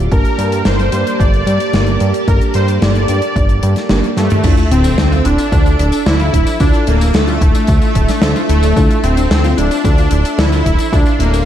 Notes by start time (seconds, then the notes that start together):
Already playing: G4
0.11 G1 G3 A#3 D4 G4 A#4 D5 A5, kick, closed hi-hat
0.25 closed hi-hat
0.38 G2, closed hi-hat
0.52 closed hi-hat
0.65 G1 C5, snare, closed hi-hat
0.79 closed hi-hat
0.92 G2, closed hi-hat
1.07 closed hi-hat
1.20 G1 D5, kick, closed hi-hat
1.34 closed hi-hat
1.47 G2, closed hi-hat
1.60 closed hi-hat
1.73 G1 A#3 D4 G4 A#4, snare, closed hi-hat
1.87 closed hi-hat
2.00 G2, closed hi-hat
2.14 closed hi-hat
2.28 G1 A#3 D4 G4 A4 A#4, kick, closed hi-hat
2.41 closed hi-hat
2.54 G2 C5, closed hi-hat
2.68 closed hi-hat
2.82 G1 D5, snare, closed hi-hat
2.95 closed hi-hat
3.08 G2, closed hi-hat
3.22 closed hi-hat
3.36 G1, kick, closed hi-hat
3.49 closed hi-hat
3.63 G2, closed hi-hat
3.76 snare, closed hi-hat
3.89 G1 A#3 D4 G4 A#4, snare, closed hi-hat
4.04 closed hi-hat
4.17 G2 A3, snare, closed hi-hat
4.30 closed hi-hat, mid tom
4.44 D2 D4 E4 F4 A4 E5 D6, kick, closed hi-hat, tambourine, crash, sub drop
4.57 F4, closed hi-hat, tambourine
4.71 D1 C4 E4, closed hi-hat
4.84 D4, closed hi-hat, tambourine
4.98 D2 A4, snare, closed hi-hat, tambourine
5.12 F4, closed hi-hat, tambourine
5.25 D1 D4 E4, closed hi-hat
5.38 D4, closed hi-hat, tambourine
5.52 D2 A4, kick, closed hi-hat, tambourine
5.66 F4, closed hi-hat, tambourine
5.79 D1 E4, closed hi-hat
5.92 D4, closed hi-hat, tambourine
6.06 D2 F3 D4 E4 A4 C5, snare, closed hi-hat, tambourine
6.20 F4, closed hi-hat, tambourine
6.33 D1 E4, kick, closed hi-hat
6.47 D4, closed hi-hat, tambourine
6.60 D2 D4 E4 F4 A4, kick, closed hi-hat, tambourine
6.73 F4, closed hi-hat, tambourine
6.87 D1 A#3 E4, closed hi-hat
7.01 D4, closed hi-hat, tambourine
7.14 D2 A3 A4, snare, closed hi-hat, tambourine
7.27 F4, closed hi-hat, tambourine
7.41 D1 E4, kick, closed hi-hat
7.55 D4, closed hi-hat, tambourine
7.67 D2 A4, kick, closed hi-hat, tambourine
7.82 F4, closed hi-hat, tambourine
7.95 D1 E4, kick, closed hi-hat
8.08 D4, snare, closed hi-hat, tambourine
8.22 D2 D4 E4 F4 A4 C5, snare, closed hi-hat, tambourine
8.36 F4, closed hi-hat, tambourine
8.49 D1 A3 E4, closed hi-hat
8.63 D4, closed hi-hat, tambourine
8.76 D2 D4 E4 F4 A4 C6, kick, closed hi-hat, tambourine
8.90 F4, closed hi-hat, tambourine
9.03 D1 C4 E4, closed hi-hat
9.17 D4, closed hi-hat, tambourine
9.31 D2 A4, snare, closed hi-hat, tambourine
9.44 F4, closed hi-hat, tambourine
9.57 D1 D4 E4, closed hi-hat
9.71 D4, closed hi-hat, tambourine
9.85 D2 A4, kick, closed hi-hat, tambourine
9.98 F4, closed hi-hat, tambourine
10.11 D1 E4, closed hi-hat
10.25 D4, closed hi-hat, tambourine
10.38 D2 F3 D4 E4 A4 C5, snare, closed hi-hat, tambourine
10.52 F4, closed hi-hat, tambourine
10.65 D1 E4, kick, closed hi-hat
10.79 D4, closed hi-hat, tambourine
10.93 D2 D4 E4 F4 A4, kick, closed hi-hat, tambourine
11.06 F4, closed hi-hat, tambourine
11.19 D1 A#3 E4, closed hi-hat
11.33 D4, closed hi-hat, tambourine